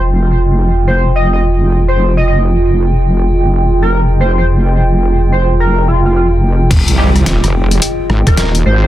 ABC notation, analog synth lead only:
X:1
M:4/4
L:1/16
Q:"Swing 16ths" 1/4=108
K:Fm
V:1 name="Analog synth lead"
z6 c z e e z3 c2 e | e z8 z2 B z2 c c | z6 c z B2 F F F z3 | z8 z3 B z2 c c |]